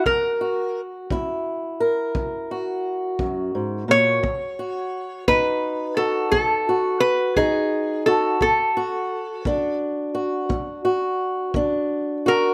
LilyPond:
<<
  \new Staff \with { instrumentName = "Resonator guitar played with a steel bar" } { \time 12/8 \key b \major \tempo 4. = 57 ais'4 r1 r8 cis''8~ | cis''4. b'4 a'8 a'4 b'8 gis'4 a'8 | a'2 r2. r8 ais'8 | }
  \new Staff \with { instrumentName = "Steel-string acoustic guitar" } { \time 12/8 \key b \major << { r8 fis'4 e'4 ais'4 fis'2~ fis'8 | r8 fis'4 dis'4 fis'4 fis'4 dis'4 fis'8 | r8 fis'4 d'4 fis'4 fis'4 d'4 fis'8 | } \\ { fis,4 r8 fis,4 r8 fis,4 r8 fis,8 gis,8 ais,8 | b,4 r8 b,4 r8 b,4 r8 b,4 r8 | b,4 r8 b,4 r8 b,4 r8 b,4 r8 | } >> }
  \new DrumStaff \with { instrumentName = "Drums" } \drummode { \time 12/8 bd4. bd4. bd4. bd4. | bd4. bd4. bd4. bd4. | bd4. bd4. bd4. bd4. | }
>>